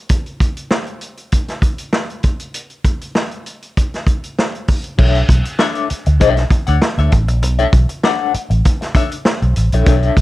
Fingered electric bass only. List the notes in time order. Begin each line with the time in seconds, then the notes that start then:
4.99 B1
5.29 B1
5.91 muted fingered electric bass stroke
6.07 D2
6.21 B1
6.68 D2
6.98 D2
7.13 A1
7.28 A#1
7.42 B1
7.73 B1
8.34 muted fingered electric bass stroke
8.50 A1
9.42 B1
9.57 A1
9.73 A#1
10.17 B1